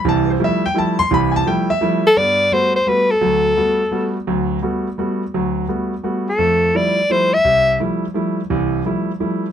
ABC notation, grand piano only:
X:1
M:3/4
L:1/16
Q:"Swing" 1/4=170
K:Flyd
V:1 name="Grand piano"
a2 [Bc]2 e2 g2 a2 c'2 | b2 [_a=a]2 g2 e4- e z | z12 | z12 |
z12 | z12 | z12 | z12 |
z12 |]
V:2 name="Grand piano"
[C,,E,]4 [F,G,A,E]2 z2 [F,G,A,E]2 z2 | [C,,E,]4 [F,G,A,E]2 z2 [F,G,A,E]2 z2 | [G,,B,]4 [G,A,B,^F]2 z2 [G,A,B,F]2 z2 | [D,,^F,]4 [G,A,B,^F]2 z2 [G,A,B,F]2 z2 |
[D,,^F,]4 [G,A,B,^F]2 z2 [G,A,B,F]2 z2 | [D,,^F,]4 [G,A,B,^F]2 z2 [G,A,B,F]2 z2 | [F,,A,]4 [F,G,A,E]2 z2 [F,G,A,E]2 z2 | C,,4 [F,G,A,E]2 z2 [F,G,A,E]2 z2 |
[C,,E,]4 [F,G,A,E]2 z2 [F,G,A,E]2 z2 |]